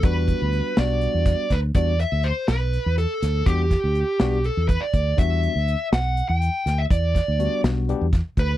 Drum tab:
HH |xxxxxxx|xxxxxxx|xxxxxxx|xxxxxxx|
SD |---o-oo|---o--o|-o-o---|---o--o|
BD |oo---oo|o------|oo---oo|o------|

HH |xxxxxxx|
SD |-o-o-o-|
BD |oo---oo|